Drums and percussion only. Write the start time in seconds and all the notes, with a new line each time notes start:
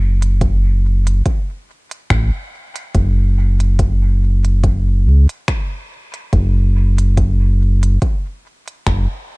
0.22 closed hi-hat
0.41 kick, closed hi-hat
1.07 closed hi-hat
1.26 kick, closed hi-hat
1.91 closed hi-hat
2.10 finger snap, kick, closed hi-hat
2.76 closed hi-hat
2.95 kick, closed hi-hat
3.60 closed hi-hat
3.79 kick, closed hi-hat
4.45 closed hi-hat
4.64 kick, closed hi-hat
5.29 closed hi-hat
5.48 finger snap, kick, closed hi-hat
6.14 closed hi-hat
6.33 kick, closed hi-hat
6.98 closed hi-hat
7.17 kick, closed hi-hat
7.83 closed hi-hat
8.02 kick, closed hi-hat
8.68 closed hi-hat
8.87 finger snap, kick, closed hi-hat